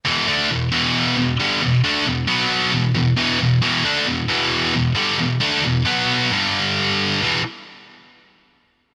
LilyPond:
\new Staff \with { instrumentName = "Distorted electric guitar" } { \clef bass \time 4/4 \key e \minor \tempo 4 = 134 <e, b, e>8 <d a d'>8 <e, b,>8 <e, b, e>4 <e, b,>8 <g, d g>8 <e, b,>8 | <d a d'>8 <e, b,>8 <b, fis b>4 <e, b,>8 <e, b,>8 <e, b, e>8 <e, b,>8 | <e, b, e>8 <d a d'>8 <e, b,>8 <e, b, e>4 <e, b,>8 <g, d g>8 <e, b,>8 | <d a d'>8 <e, b,>8 <b, fis b>4 <g, d g>2 |
<e, b, e>8 r2. r8 | }